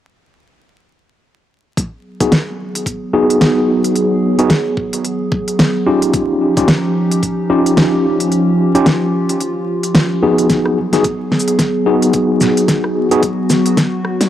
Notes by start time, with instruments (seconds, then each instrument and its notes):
1.77 ambient pad F#3 B3 G#4, kick, closed hi-hat
2.20 tine electric piano B3 D#4 F#4 G#4, kick, closed hi-hat
2.32 snare, closed hi-hat
2.75 closed hi-hat
2.86 kick, closed hi-hat
3.13 tine electric piano B3 D#4 F#4 G#4
3.30 closed hi-hat
3.41 snare, closed hi-hat
3.84 closed hi-hat
3.96 closed hi-hat
4.39 tine electric piano B3 D#4 F#4 G#4, closed hi-hat
4.50 snare, closed hi-hat
4.77 kick
4.93 closed hi-hat
5.04 closed hi-hat
5.32 kick
5.48 closed hi-hat
5.59 snare, closed hi-hat
5.86 tine electric piano C#4 D#4 F4 G4
6.02 closed hi-hat
6.13 ambient pad F3 C#4 D#4 G4, kick, closed hi-hat
6.57 tine electric piano C#4 D#4 F4 G4, kick, closed hi-hat
6.68 snare, closed hi-hat
7.11 closed hi-hat
7.23 kick, closed hi-hat
7.50 tine electric piano C#4 D#4 F4 G4
7.66 closed hi-hat
7.77 snare, closed hi-hat
8.20 closed hi-hat
8.32 ambient pad F4, closed hi-hat
8.75 tine electric piano C#4 D#4 F4 G4, closed hi-hat
8.86 snare, closed hi-hat
9.29 closed hi-hat
9.40 closed hi-hat
9.83 closed hi-hat
9.95 snare, closed hi-hat
10.23 tine electric piano B3 D#4 F#4 G#4
10.38 closed hi-hat
10.49 ambient pad F#3 B3 G#4, kick, snare, closed hi-hat
10.65 cross-stick
10.93 tine electric piano B3 D#4 F#4 G#4, snare, closed hi-hat
11.04 kick, closed hi-hat
11.32 snare
11.40 shaker
11.48 closed hi-hat
11.59 kick, snare, closed hi-hat
11.86 tine electric piano B3 D#4 F#4 G#4
12.02 closed hi-hat
12.13 kick, closed hi-hat
12.41 snare, shaker
12.57 closed hi-hat
12.68 ambient pad F#4, kick, snare, closed hi-hat
12.84 cross-stick
13.11 tine electric piano B3 D#4 F#4 G#4, closed hi-hat
13.23 kick, closed hi-hat
13.50 snare, shaker
13.66 closed hi-hat
13.77 kick, snare, closed hi-hat
14.05 cross-stick
14.21 snare, closed hi-hat